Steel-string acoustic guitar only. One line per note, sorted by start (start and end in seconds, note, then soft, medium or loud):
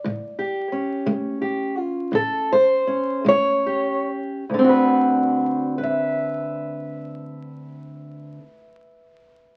0.04 0.65 A2 medium
0.39 1.40 G4 medium
0.72 2.86 C#4 soft
1.06 1.69 A3 medium
1.42 1.78 G4 soft
1.78 2.13 F4 loud
2.12 2.79 A2 medium
2.12 2.51 A4 loud
2.52 3.27 C5 loud
2.87 4.44 C#4 soft
3.25 3.98 A3 medium
3.25 4.08 C#5 loud
3.66 4.44 G4 soft
4.50 8.38 D2 medium
4.54 8.43 D3 medium
4.59 8.47 C4 medium
4.64 5.78 F#4 medium
4.69 5.78 B4 medium
5.78 9.57 B4 medium
5.83 9.57 E5 medium